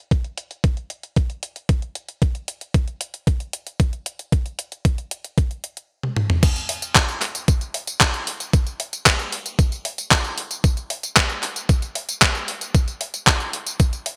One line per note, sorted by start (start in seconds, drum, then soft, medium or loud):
0.11 kick loud
0.11 closed hi-hat soft
0.24 closed hi-hat soft
0.38 closed hi-hat medium
0.51 closed hi-hat soft
0.64 kick loud
0.64 closed hi-hat soft
0.77 closed hi-hat soft
0.90 closed hi-hat medium
1.03 closed hi-hat soft
1.16 kick loud
1.16 closed hi-hat soft
1.30 closed hi-hat soft
1.43 closed hi-hat medium
1.56 closed hi-hat soft
1.69 kick loud
1.69 closed hi-hat soft
1.82 closed hi-hat soft
1.95 closed hi-hat medium
2.09 closed hi-hat soft
2.22 kick loud
2.22 closed hi-hat soft
2.35 closed hi-hat soft
2.48 closed hi-hat medium
2.61 closed hi-hat soft
2.74 kick loud
2.74 closed hi-hat medium
2.88 closed hi-hat soft
3.01 closed hi-hat medium
3.14 closed hi-hat medium
3.27 kick loud
3.27 closed hi-hat soft
3.40 closed hi-hat soft
3.53 closed hi-hat medium
3.67 closed hi-hat medium
3.80 kick loud
3.80 closed hi-hat medium
3.93 closed hi-hat soft
4.06 closed hi-hat medium
4.19 closed hi-hat medium
4.32 kick loud
4.32 closed hi-hat medium
4.46 closed hi-hat soft
4.59 closed hi-hat medium
4.72 closed hi-hat medium
4.85 kick loud
4.85 closed hi-hat medium
4.98 closed hi-hat soft
5.11 closed hi-hat medium
5.24 closed hi-hat medium
5.38 kick loud
5.38 closed hi-hat medium
5.51 closed hi-hat soft
5.64 closed hi-hat medium
5.77 closed hi-hat medium
6.03 high tom soft
6.16 mid tom medium
6.30 mid tom medium
6.43 kick loud
6.43 closed hi-hat medium
6.43 crash loud
6.43 tambourine soft
6.56 closed hi-hat soft
6.56 tambourine soft
6.69 open hi-hat loud
6.82 closed hi-hat medium
6.82 tambourine medium
6.95 kick loud
6.95 clap loud
6.95 closed hi-hat medium
6.95 tambourine soft
7.09 closed hi-hat soft
7.09 tambourine soft
7.22 clap soft
7.22 open hi-hat medium
7.35 closed hi-hat medium
7.35 tambourine medium
7.48 kick loud
7.48 closed hi-hat medium
7.48 tambourine soft
7.61 closed hi-hat soft
7.61 tambourine soft
7.74 open hi-hat loud
7.87 closed hi-hat medium
7.87 tambourine medium
8.01 kick loud
8.01 clap loud
8.01 closed hi-hat medium
8.01 tambourine soft
8.14 closed hi-hat soft
8.14 tambourine soft
8.27 open hi-hat medium
8.40 closed hi-hat medium
8.40 tambourine medium
8.53 kick loud
8.53 closed hi-hat medium
8.53 tambourine soft
8.67 closed hi-hat soft
8.67 tambourine soft
8.80 open hi-hat loud
8.93 closed hi-hat medium
8.93 tambourine medium
9.06 kick loud
9.06 clap loud
9.06 closed hi-hat medium
9.06 tambourine soft
9.19 closed hi-hat soft
9.19 tambourine soft
9.32 open hi-hat medium
9.46 closed hi-hat medium
9.46 tambourine medium
9.59 kick loud
9.59 closed hi-hat medium
9.59 tambourine soft
9.72 closed hi-hat soft
9.72 tambourine soft
9.85 open hi-hat loud
9.98 closed hi-hat medium
9.98 tambourine medium
10.11 kick loud
10.11 clap loud
10.11 closed hi-hat medium
10.11 tambourine soft
10.24 closed hi-hat soft
10.24 tambourine soft
10.38 open hi-hat medium
10.51 closed hi-hat medium
10.51 tambourine medium
10.64 kick loud
10.64 closed hi-hat medium
10.64 tambourine soft
10.77 closed hi-hat soft
10.77 tambourine soft
10.90 open hi-hat loud
11.03 closed hi-hat medium
11.03 tambourine medium
11.16 kick loud
11.16 clap loud
11.16 closed hi-hat medium
11.16 tambourine soft
11.30 closed hi-hat soft
11.30 tambourine soft
11.43 clap soft
11.43 open hi-hat medium
11.56 closed hi-hat medium
11.56 tambourine medium
11.69 kick loud
11.69 closed hi-hat soft
11.69 tambourine soft
11.82 closed hi-hat soft
11.82 tambourine soft
11.95 open hi-hat loud
12.09 closed hi-hat medium
12.09 tambourine medium
12.22 kick loud
12.22 clap loud
12.22 closed hi-hat medium
12.22 tambourine soft
12.35 closed hi-hat soft
12.35 tambourine soft
12.48 open hi-hat medium
12.61 closed hi-hat medium
12.61 tambourine medium
12.75 kick loud
12.75 closed hi-hat medium
12.75 tambourine soft
12.88 closed hi-hat soft
12.88 tambourine soft
13.01 open hi-hat loud
13.14 closed hi-hat medium
13.14 tambourine medium
13.27 kick loud
13.27 clap loud
13.27 closed hi-hat medium
13.27 tambourine medium
13.40 closed hi-hat soft
13.40 tambourine soft
13.53 open hi-hat medium
13.66 closed hi-hat medium
13.66 tambourine medium
13.80 kick loud
13.80 closed hi-hat medium
13.80 tambourine soft
13.93 closed hi-hat soft
13.93 tambourine soft
14.06 open hi-hat loud